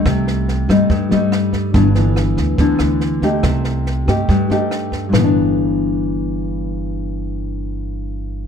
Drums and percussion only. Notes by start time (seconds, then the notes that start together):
0.06 kick, cross-stick, snare
0.27 snare
0.48 snare
0.69 kick, cross-stick, snare
0.90 kick, snare
1.11 snare
1.32 cross-stick, snare
1.53 kick, snare
1.74 kick, snare
1.95 snare
2.16 cross-stick, snare
2.37 kick, snare
2.58 kick, snare
2.79 cross-stick, snare
3.01 snare
3.22 kick, snare
3.43 kick, cross-stick, snare
3.64 snare
3.86 snare
4.08 kick, cross-stick, snare
4.29 kick, snare
4.51 snare
4.71 cross-stick, snare
4.92 kick, snare
5.14 snare, floor tom